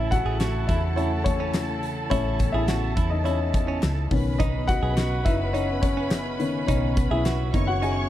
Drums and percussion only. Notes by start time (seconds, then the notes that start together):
0.12 kick, closed hi-hat
0.40 snare, clap, closed hi-hat
0.69 kick, closed hi-hat
0.98 closed hi-hat
1.26 kick, closed hi-hat
1.54 snare, clap, closed hi-hat
1.83 closed hi-hat
2.11 kick, closed hi-hat
2.39 kick, closed hi-hat
2.68 snare, clap, closed hi-hat
2.97 kick, closed hi-hat
3.26 closed hi-hat
3.54 kick, closed hi-hat
3.83 snare, clap, closed hi-hat
4.11 kick, open hi-hat
4.40 kick, closed hi-hat
4.68 kick, closed hi-hat
4.97 snare, clap, closed hi-hat
5.26 kick, closed hi-hat
5.55 closed hi-hat
5.83 kick, closed hi-hat
6.11 snare, clap, closed hi-hat
6.40 closed hi-hat
6.68 kick, closed hi-hat
6.97 kick, closed hi-hat
7.25 snare, clap, closed hi-hat
7.54 kick, closed hi-hat
7.83 closed hi-hat